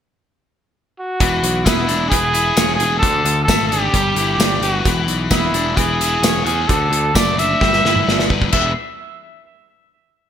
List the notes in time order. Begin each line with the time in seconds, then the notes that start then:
1.00 F#4
1.20 E1 E3, kick, closed hi-hat
1.43 B1, closed hi-hat
1.65 E1 B3 E4, kick, snare, closed hi-hat, tambourine
1.87 E1 D4, closed hi-hat
2.09 E1 E3 G#4, kick, closed hi-hat
2.33 E4, closed hi-hat
2.56 E1 C#5, snare, closed hi-hat, tambourine
2.75 G#4
2.79 E1 G#4, closed hi-hat
2.99 D2 D3 A4, kick
3.03 closed hi-hat
3.25 D2, closed hi-hat
3.44 A4
3.48 G#1 A3, kick, snare, closed hi-hat, tambourine
3.68 D4 G4
3.72 closed hi-hat
3.93 G1 G3, kick, closed hi-hat
4.15 G1 E4, closed hi-hat
4.38 G1 D5, snare, closed hi-hat, tambourine
4.60 G1 F#4 B4, closed hi-hat
4.85 E1 E3, kick, closed hi-hat
5.07 B1, closed hi-hat
5.30 E1 B3 E4, kick, snare, closed hi-hat, tambourine
5.53 E1 D4, closed hi-hat
5.76 E1 E3 G#4, kick, closed hi-hat
6.01 E4, closed hi-hat
6.21 E1 C#5, snare, closed hi-hat, tambourine
6.45 E2 G#4, closed hi-hat
6.68 D2 D3 A4, kick, closed hi-hat
6.91 D2, closed hi-hat
7.15 F#1 A3 D5, kick, snare, closed hi-hat, tambourine
7.38 D4 E5, closed hi-hat
7.61 G1 G3, kick, snare
7.73 snare
7.84 G1 E4, snare
7.96 mid tom
8.07 G1 D5, snare
8.19 snare
8.30 G1 B4, kick
8.42 kick
8.52 E1 E3 B3 D4 G#4 B4 E5, kick, crash